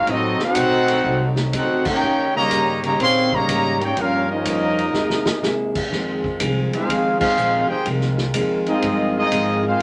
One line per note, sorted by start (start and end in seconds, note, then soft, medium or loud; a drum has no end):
0.00 1.98 F#3 medium
0.00 1.98 C4 medium
0.07 0.37 A1 loud
0.07 0.41 A2 soft
0.07 0.42 F#3 soft
0.07 0.41 F#3 medium
0.07 2.01 A3 medium
0.07 0.42 C4 medium
0.07 0.41 C4 medium
0.07 3.94 D#4 medium
0.07 0.41 D#4 medium
0.07 0.43 D#4 medium
0.07 kick soft
0.07 ride medium
0.11 0.42 C4 loud
0.11 0.42 F#4 loud
0.11 0.42 A4 medium
0.11 0.42 D#5 loud
0.39 1.34 C4 loud
0.39 1.34 D#4 loud
0.39 1.34 F#4 loud
0.39 muted upright bass stroke soft
0.39 snare soft
0.44 1.35 D#4 loud
0.44 1.35 A4 medium
0.44 1.35 C5 loud
0.44 1.35 F#5 loud
0.55 1.03 B1 loud
0.55 0.90 A2 medium
0.55 0.90 F#3 medium
0.55 0.90 C4 medium
0.55 0.91 D#4 medium
0.55 kick soft
0.55 hi-hat pedal medium
0.55 ride medium
0.88 ride medium
1.04 1.51 C2 loud
1.04 1.38 A2 medium
1.04 1.39 F#3 medium
1.04 1.39 C4 medium
1.04 1.40 D#4 medium
1.04 kick soft
1.36 snare medium
1.52 2.00 D2 medium
1.52 1.87 A2 medium
1.52 1.87 F#3 medium
1.52 1.88 C4 medium
1.52 1.84 C4 medium
1.52 1.88 D#4 medium
1.52 1.84 D#4 medium
1.52 1.85 F#4 medium
1.52 1.84 A4 medium
1.52 1.84 C5 medium
1.52 1.84 F#5 medium
1.52 kick soft
1.52 hi-hat pedal medium
1.52 ride medium
1.85 2.32 A#3 medium
1.85 2.32 C#4 medium
1.85 2.32 D#4 medium
1.85 2.32 G4 medium
1.85 2.32 A#4 medium
1.85 2.32 C#5 medium
1.85 2.32 G5 loud
1.85 kick medium
1.85 crash medium
2.02 2.49 D#2 medium
2.02 3.95 C#3 medium
2.02 2.36 D#3 soft
2.02 4.92 G3 medium
2.02 2.36 A#3 medium
2.02 5.88 A#3 medium
2.02 2.37 C#4 medium
2.02 2.37 G4 medium
2.36 2.80 C#3 loud
2.36 2.81 G3 medium
2.36 2.80 A#3 medium
2.36 2.81 G4 loud
2.36 2.81 C#5 loud
2.36 2.81 D#5 loud
2.36 2.81 A#5 loud
2.50 2.98 G2 loud
2.50 2.85 D#3 medium
2.50 2.85 A#3 medium
2.50 2.86 C#4 medium
2.50 2.86 G4 medium
2.50 kick soft
2.50 hi-hat pedal medium
2.50 ride medium
2.83 2.98 C#3 medium
2.83 2.98 G3 medium
2.83 2.98 A#3 medium
2.83 2.99 G4 medium
2.83 2.99 C#5 medium
2.83 3.00 D#5 medium
2.83 2.99 A#5 loud
2.83 ride medium
2.99 3.47 A#2 loud
2.99 3.34 D#3 medium
2.99 3.34 A#3 soft
2.99 3.30 C4 loud
2.99 3.35 C#4 medium
2.99 3.35 G4 medium
2.99 3.31 G#4 loud
2.99 3.31 C#5 loud
2.99 3.31 F5 medium
2.99 3.31 C6 loud
2.99 kick soft
2.99 ride medium
3.32 3.82 C#3 medium
3.32 3.82 G3 loud
3.32 3.81 A#3 loud
3.32 3.81 G4 medium
3.32 3.82 C#5 loud
3.32 3.81 D#5 medium
3.32 3.81 A#5 loud
3.32 kick medium
3.47 3.95 G#2 loud
3.47 3.82 D#3 medium
3.47 3.83 A#3 medium
3.47 3.83 C#4 medium
3.47 3.83 G4 medium
3.47 kick soft
3.47 hi-hat pedal medium
3.47 ride medium
3.81 3.95 A#3 medium
3.81 3.96 C#4 medium
3.81 3.97 D#4 medium
3.81 3.96 G4 medium
3.81 3.97 A#4 medium
3.81 3.97 C#5 medium
3.81 3.97 G5 medium
3.81 ride medium
3.96 4.31 G2 soft
3.96 4.44 G2 medium
3.96 4.93 C#3 medium
3.96 4.31 F3 soft
3.96 4.29 A#3 medium
3.96 4.32 A#3 medium
3.96 4.29 C#4 medium
3.96 4.32 C#4 medium
3.96 4.30 C#4 medium
3.96 4.93 F4 medium
3.96 4.29 F4 medium
3.96 4.31 A#4 medium
3.96 4.31 F5 loud
3.96 kick soft
3.96 ride medium
4.00 4.30 G4 medium
4.30 4.90 F3 medium
4.30 5.72 A#3 medium
4.30 4.91 C#4 medium
4.30 5.72 D#4 medium
4.30 4.91 G4 medium
4.30 5.73 A#4 medium
4.30 5.72 D#5 loud
4.45 4.92 F2 loud
4.45 4.80 G2 medium
4.45 4.80 F3 medium
4.45 4.81 A#3 medium
4.45 4.81 C#4 medium
4.45 kick soft
4.45 hi-hat pedal medium
4.45 ride medium
4.79 ride medium
4.93 5.40 E2 medium
4.93 5.28 C3 medium
4.93 5.91 C3 medium
4.93 5.29 G#3 medium
4.93 5.29 A#3 medium
4.93 5.91 D#4 medium
4.93 9.77 G#4 medium
4.93 snare medium
4.97 5.30 E4 medium
5.10 snare medium
5.26 snare loud
5.42 5.89 D#2 medium
5.42 5.77 C3 medium
5.42 5.77 G#3 medium
5.42 5.77 A#3 medium
5.42 5.78 E4 medium
5.42 snare medium
5.42 hi-hat pedal medium
5.75 kick medium
5.75 crash medium
5.91 6.38 F2 loud
5.91 6.26 F2 medium
5.91 6.26 D#3 medium
5.91 9.77 D#3 medium
5.91 6.27 G#3 medium
5.91 7.85 C4 medium
5.91 6.27 C4 medium
5.91 9.82 F4 medium
5.91 kick soft
5.91 snare soft
6.24 kick medium
6.40 6.70 C2 loud
6.40 6.74 F2 medium
6.40 6.74 D#3 medium
6.40 6.75 G#3 medium
6.40 6.75 C4 medium
6.40 kick soft
6.40 hi-hat pedal medium
6.40 ride medium
6.73 7.18 G#3 medium
6.73 7.18 C4 medium
6.73 7.18 D#4 medium
6.73 7.18 F4 medium
6.73 7.18 G#4 medium
6.73 7.19 C5 medium
6.73 7.19 F5 medium
6.73 muted upright bass stroke soft
6.73 ride medium
6.88 7.36 D#2 medium
6.88 7.23 F2 soft
6.88 7.23 D#3 soft
6.88 7.24 G#3 medium
6.88 7.24 C4 medium
6.88 kick soft
6.88 ride medium
7.19 7.66 G#3 medium
7.19 7.66 C4 medium
7.19 7.65 D#4 medium
7.19 7.66 F4 medium
7.19 7.66 G#4 medium
7.19 7.66 C5 medium
7.19 7.66 F5 loud
7.19 kick loud
7.19 crash medium
7.37 7.67 A#1 medium
7.37 7.71 F2 medium
7.37 7.72 D#3 medium
7.37 7.72 G#3 medium
7.37 7.72 C4 medium
7.37 hi-hat pedal medium
7.68 7.86 D#4 medium
7.68 7.85 G4 medium
7.68 7.86 G#4 medium
7.68 7.86 C5 medium
7.68 7.86 G5 loud
7.68 muted upright bass stroke soft
7.85 8.33 C2 medium
7.85 8.20 F2 medium
7.85 8.21 D#3 soft
7.85 8.21 G#3 medium
7.85 8.22 C4 medium
7.85 9.82 A#4 medium
7.85 kick soft
7.85 ride medium
8.01 snare soft
8.18 snare medium
8.33 8.81 D#2 medium
8.33 8.69 F2 medium
8.33 8.69 D#3 medium
8.33 8.69 G#3 medium
8.33 8.69 C4 medium
8.33 kick soft
8.33 hi-hat pedal medium
8.33 ride medium
8.66 9.12 G#3 medium
8.66 9.12 C4 medium
8.66 9.14 C4 medium
8.66 9.13 D#4 medium
8.66 9.13 F4 medium
8.66 9.13 G#4 medium
8.66 9.14 D#5 loud
8.66 ride medium
8.82 9.17 F2 medium
8.82 9.30 G2 medium
8.82 9.18 D#3 medium
8.82 9.18 G#3 medium
8.82 9.19 C4 medium
8.82 kick soft
8.82 ride medium
9.17 9.62 G#3 medium
9.17 9.62 C4 medium
9.17 9.62 D#4 medium
9.17 9.62 F4 medium
9.17 9.62 G#4 medium
9.17 9.62 D#5 loud
9.31 9.66 F2 medium
9.31 9.79 G#2 loud
9.31 9.67 D#3 medium
9.31 9.67 G#3 medium
9.31 9.67 C4 medium
9.31 kick soft
9.31 hi-hat pedal medium
9.31 ride medium
9.64 9.80 G#3 medium
9.64 9.80 C4 medium
9.64 9.81 F4 medium
9.64 9.82 F5 loud
9.69 9.82 D#4 medium
9.69 9.82 G#4 medium
9.69 9.82 C5 medium